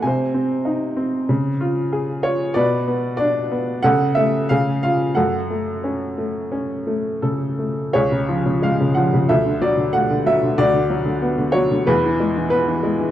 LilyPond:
<<
  \new Staff \with { instrumentName = "Upright piano" } { \time 4/4 \key fis \minor \tempo 4 = 92 << { gis''2. r8 cis''8 | d''4 d''4 fis''8 e''8 eis''8 eis''8 | fis''2. a'4 | cis''4 eis''8 fis''8 e''8 d''8 fis''8 e''8 |
d''4. cis''8 b'4 b'4 | } \\ { bis'2. r4 | b'2 a'4 gis'4 | a'2. r4 | gis'2 a'2 |
fis'2 gis'2 | } >> }
  \new Staff \with { instrumentName = "Upright piano" } { \clef bass \time 4/4 \key fis \minor bis,8 bis8 dis'8 bis8 cis8 eis'8 gis'8 eis'8 | b,8 b8 d'8 b8 cis8 a8 cis8 eis'8 | fis,8 a8 cis'8 a8 cis'8 a8 cis8 a8 | cis,16 cis16 eis16 cis16 gis16 cis16 eis16 cis16 d,16 d16 fis16 d16 a16 d16 fis16 d16 |
d,16 d16 fis16 d16 b16 d16 fis16 d16 e,16 e16 gis16 e16 b16 e16 gis16 e16 | }
>>